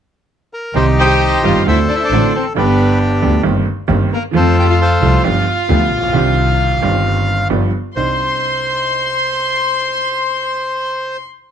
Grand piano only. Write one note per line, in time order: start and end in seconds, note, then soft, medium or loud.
0.74 1.41 C2 medium
0.74 1.40 C3 medium
0.74 1.39 D#3 medium
0.74 1.40 G3 medium
0.74 1.41 C4 medium
0.78 1.41 G4 medium
1.44 1.63 G1 medium
1.44 1.63 G2 medium
1.44 1.63 D#3 medium
1.44 1.63 G3 soft
1.44 1.63 C4 soft
1.44 1.63 G4 medium
1.66 1.86 D2 medium
1.66 1.85 D3 medium
1.66 1.85 A3 medium
1.66 1.86 C4 soft
1.66 1.85 F#4 medium
2.12 2.31 A1 medium
2.12 2.31 A2 medium
2.12 2.31 D3 medium
2.12 2.31 A3 medium
2.12 2.31 C4 medium
2.12 2.31 F#4 medium
2.54 3.20 G1 medium
2.54 3.20 G2 medium
2.54 3.19 D3 medium
2.54 3.20 G3 medium
2.54 3.21 B3 medium
2.54 3.21 G4 medium
3.22 3.42 D2 medium
3.22 3.42 D3 medium
3.22 3.41 G3 medium
3.22 3.42 B3 medium
3.22 3.42 G4 medium
3.43 3.63 G1 medium
3.43 3.63 G2 medium
3.43 3.63 D#3 medium
3.43 3.63 A#3 medium
3.43 3.63 C4 medium
3.43 3.63 G4 medium
3.88 4.08 G1 medium
3.88 4.08 G2 medium
3.88 4.08 D#3 medium
3.88 4.08 A#3 medium
3.88 4.08 C4 medium
3.88 4.08 G4 medium
4.33 4.98 F2 medium
4.33 4.98 F3 medium
4.33 4.98 A3 medium
4.33 4.99 C4 medium
4.33 4.99 A4 medium
5.01 5.21 C2 medium
5.01 5.21 C3 medium
5.01 5.21 F3 medium
5.01 5.21 A3 medium
5.01 5.21 C4 medium
5.01 5.21 A4 medium
5.24 5.43 G1 medium
5.24 5.43 G2 medium
5.24 5.43 F3 medium
5.24 5.43 B3 medium
5.24 5.43 D4 medium
5.24 5.43 G4 medium
5.69 5.88 D2 medium
5.69 5.88 D3 medium
5.69 5.88 F3 medium
5.69 5.88 B3 medium
5.69 5.88 D4 medium
5.69 5.88 G4 medium
5.97 6.03 A1 soft
6.03 6.08 A#1 medium
6.08 6.14 B1 medium
6.08 6.77 D#3 medium
6.13 6.78 C2 medium
6.13 6.78 C3 medium
6.13 6.78 C4 medium
6.13 6.78 D4 medium
6.13 6.79 G4 medium
6.81 7.47 G1 medium
6.81 7.47 G2 medium
6.81 7.46 D#3 medium
6.81 7.47 C4 soft
6.81 7.48 D4 soft
6.81 7.48 G4 medium
7.50 7.70 G1 medium
7.50 7.70 G2 medium
7.50 7.70 F3 medium
7.50 7.69 B3 medium
7.50 7.70 D4 medium
7.50 7.70 G4 medium
7.97 11.18 C2 soft
7.97 11.18 C4 soft
7.97 11.18 D4 soft
7.97 11.18 D#4 soft